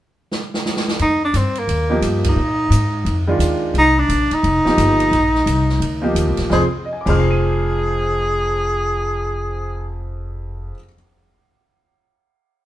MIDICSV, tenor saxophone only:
0, 0, Header, 1, 2, 480
1, 0, Start_track
1, 0, Tempo, 344630
1, 1384, Time_signature, 4, 2, 24, 8
1, 9070, Tempo, 341686
1, 17693, End_track
2, 0, Start_track
2, 0, Title_t, "Tenor saxophone"
2, 0, Program_c, 0, 66
2, 1420, Note_on_c, 0, 63, 95
2, 1681, Note_off_c, 0, 63, 0
2, 1734, Note_on_c, 0, 62, 74
2, 1907, Note_on_c, 0, 60, 67
2, 1928, Note_off_c, 0, 62, 0
2, 2218, Note_on_c, 0, 58, 70
2, 2239, Note_off_c, 0, 60, 0
2, 2849, Note_off_c, 0, 58, 0
2, 3189, Note_on_c, 0, 63, 73
2, 4541, Note_off_c, 0, 63, 0
2, 5267, Note_on_c, 0, 63, 102
2, 5555, Note_on_c, 0, 62, 88
2, 5576, Note_off_c, 0, 63, 0
2, 6037, Note_on_c, 0, 63, 83
2, 6058, Note_off_c, 0, 62, 0
2, 8603, Note_off_c, 0, 63, 0
2, 9093, Note_on_c, 0, 68, 67
2, 9249, Note_off_c, 0, 68, 0
2, 9888, Note_on_c, 0, 68, 75
2, 13999, Note_off_c, 0, 68, 0
2, 17693, End_track
0, 0, End_of_file